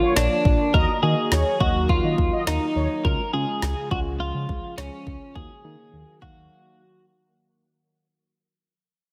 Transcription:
Already playing: D3 F3 A#3 F4
0.02 C#5
0.16 A#1 D4, snare
0.45 A#1, kick
0.74 D#2 D#3 F#3 A#3 D#4 F#4 A#4 D#5, kick
1.03 D#3 A#3 D#4 F#4 G#4 D#5
1.32 D#2 C#5, snare
1.60 D#2 F#3 A#3 D#4 F#4 D#5, kick
1.75 D#2
1.89 D#2 F4, kick
2.04 D#3 D#5
2.18 D#2, kick
2.33 D#5
2.47 D#2 D#4, snare
2.76 D#2 C#5
3.05 C#2 C#3 F3 G#3 C#4 F4 A#4, kick
3.33 C#3 G#3 C#4 F4 G#4
3.62 C#2, snare
3.91 C#2 G#3 C#4 F4 F#4, kick
4.06 C#2
4.20 C#2 F4
4.34 C#3
4.49 C#2, kick
4.78 C#2 C#4, snare
5.07 C#2, kick
5.35 D#2 D#3 F#3 A#3 D#4 F#4 G#4, kick
5.64 D#3 A#3 D#4 G#4
5.93 D#2
6.22 D#2 A#3 D#4 F#4 F5, kick
6.36 D#2

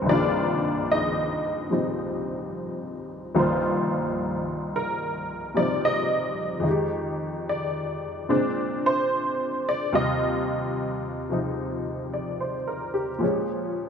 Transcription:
Already playing: A#3 C4 D#4 A#4 C5
0.02 C2 G2
0.06 D#3 F3 D4 D5
0.11 A#3 F4
0.92 D#4 D#5
1.70 A#2 F3 G3 C4 D#4
3.35 C2 G2 D#3 F3 A#3 F4
3.39 C5
4.76 A#4
5.54 A#2 F3 G3 C4 D#4 D5
5.85 D#5
6.60 F2 D#3
6.67 G#3 G4
7.49 D5
8.29 A#2 G#3 C4 D4
8.86 C5
9.69 D5
9.93 D#2 C3 G3 F4 D#5
11.30 C3 F3 D#4
12.14 D5
12.40 C5
12.67 A#4
12.94 G4
13.19 A#2 F3 G#3
13.24 C#4

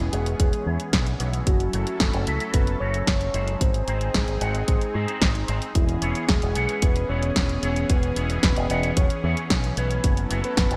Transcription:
Already playing: E3 B3 C#4 E4 G#4
0.00 closed hi-hat
0.12 E1 E3 B3 E4 G#4 F#5, closed hi-hat
0.26 closed hi-hat
0.40 E1 G#4, kick, closed hi-hat
0.53 closed hi-hat
0.66 E2 E3 B3 E4 G#4 C#5
0.80 closed hi-hat
0.93 B1, kick, snare, closed hi-hat
1.07 closed hi-hat
1.20 B1 A3 E4 F#4 C#5, closed hi-hat
1.33 closed hi-hat
1.47 F#1 F#3 C#4 E4 F#4 A4, kick, closed hi-hat
1.60 closed hi-hat
1.73 F#1 A3 E4 F#4 C#5, closed hi-hat
1.87 closed hi-hat
2.00 F#1 A4, kick, snare, closed hi-hat
2.13 F#1, closed hi-hat
2.27 C#2 A3 E4 F#4 E5, closed hi-hat
2.40 closed hi-hat
2.54 F#1 B4, kick, closed hi-hat
2.67 closed hi-hat
2.80 F#1 A3 E4 F#4 C#5
2.94 closed hi-hat
3.07 F#1, kick, snare, closed hi-hat
3.21 closed hi-hat
3.34 F#1 G#2 G#3 C4 D#4 C5, closed hi-hat
3.48 closed hi-hat
3.61 G#1 C4 D#4 G#4 C5, kick, closed hi-hat
3.74 closed hi-hat
3.87 G#1 G#2 G#3 C4 D#4 C5, closed hi-hat
4.01 closed hi-hat
4.14 G#1 G#4, kick, snare, closed hi-hat
4.28 G#1, closed hi-hat
4.41 G#1 G#2 G#3 C4 D#4 F#5, closed hi-hat
4.55 closed hi-hat
4.68 G#1 G#4, kick, closed hi-hat
4.81 closed hi-hat
4.94 G#2 G#3 C4 D#4 C5
5.08 G#2 G#3 C4 D#4 C5, closed hi-hat
5.22 G#1, kick, snare, closed hi-hat
5.35 closed hi-hat
5.48 G#1 G#3 C4 D#4 C5, closed hi-hat
5.62 closed hi-hat
5.75 E1 E3 B3 C#4 E4 G#4, kick, closed hi-hat
5.89 closed hi-hat
6.01 E1 E3 B3 E4 G#4 C#5, closed hi-hat
6.15 closed hi-hat
6.29 E1 G#4, kick, snare, closed hi-hat
6.42 E1, closed hi-hat
6.55 B1 E3 B3 E4 G#4 F#5, closed hi-hat
6.69 closed hi-hat
6.82 E1 B4, kick, closed hi-hat
6.96 closed hi-hat
7.09 E1 E3 B3 E4 G#4 C#5
7.23 closed hi-hat
7.36 E1, kick, snare, closed hi-hat
7.49 closed hi-hat
7.62 E1 E3 B3 E4 G#4 C#5, closed hi-hat
7.76 closed hi-hat
7.90 E1 B4, kick, closed hi-hat
8.03 closed hi-hat
8.16 E1 E3 B3 E4 G#4 C#5, closed hi-hat
8.30 closed hi-hat
8.43 E1 B4, kick, snare, closed hi-hat
8.56 E1, closed hi-hat
8.70 E1 E3 B3 E4 G#4 F#5, closed hi-hat
8.83 closed hi-hat
8.97 E1 C#5, kick, closed hi-hat
9.10 closed hi-hat
9.23 E2 E3 B3 E4 G#4 C#5
9.37 closed hi-hat
9.50 B1, kick, snare, closed hi-hat
9.64 closed hi-hat
9.77 B1 A3 E4 F#4 B4 C#5, closed hi-hat
9.91 closed hi-hat
10.04 F#1 F#3 E4 A4, kick, closed hi-hat
10.17 closed hi-hat
10.30 F#1 A3 E4 F#4 C#5, closed hi-hat
10.44 B4, closed hi-hat
10.57 F#1, kick, snare, closed hi-hat
10.71 F#1, closed hi-hat

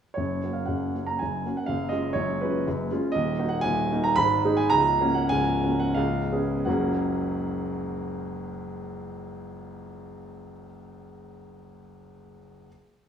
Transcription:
0.14 F#1 F#2 C#5
0.44 A#3 C#4 F#4
0.53 F5
0.66 F#1 F#2 F#5
0.95 A#3 C#4 F#4
1.06 A#5
1.19 F#1 F#2 G#5
1.46 A#3 C#4 F#4
1.57 F#5
1.66 F#1 F#2 F5
1.89 G#3 C#4 F4 D#5
2.13 F#1 F#2 C#5
2.41 G#3 C#4 F4 B4
2.67 F#1 F#2
2.92 G#3 C#4 F4
3.12 D#1 D#2 D#5
3.39 A#3 D#4 F#4
3.49 F#5
3.61 D#1 D#2 G#5
3.92 A#3 D#4 F#4
4.04 A#5
4.16 G#1 G#2 B5
4.45 G#3 D#4 G#4
4.57 G#5
4.70 C#1 C#2 A#5
5.00 A#3 C#4 F#4
5.14 F#5
5.29 C#1 C#2 G#5
5.64 A#3 C#4 F#4
5.80 F#5
5.95 C#1 C#2 F5
6.32 B3 C#4 G#4
6.65 F#1 C#2 F#3 A#3 C#4 F#4 F#5

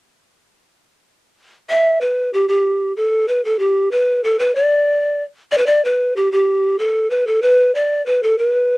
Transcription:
1.69 E5
2.01 B4
2.33 G4
2.48 G4
2.97 A4
3.28 B4
3.45 A4
3.59 G4
3.91 B4
4.24 A4
4.39 B4
4.55 D5
5.52 D5
5.58 B4
5.66 D5
5.85 B4
6.16 G4
6.32 G4
6.79 A4
7.10 B4
7.27 A4
7.42 B4
7.75 D5
8.06 B4
8.23 A4
8.38 B4

